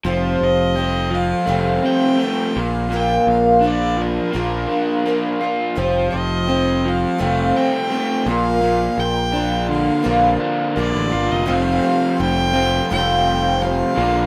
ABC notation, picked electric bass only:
X:1
M:4/4
L:1/16
Q:1/4=84
K:F
V:1 name="Picked electric bass" clef=bass
F,,,2 F,,,6 F,,,2 z4 B,,,2- | B,,,2 B,,,6 B,,,2 z6 | F,,,2 F,,,6 F,,,2 z4 B,,,2- | B,,,2 B,,,6 B,,,2 z2 B,,, A,,, G,,, F,,, |
F,,,2 z2 F,,,4 F,,,6 B,,,2 |]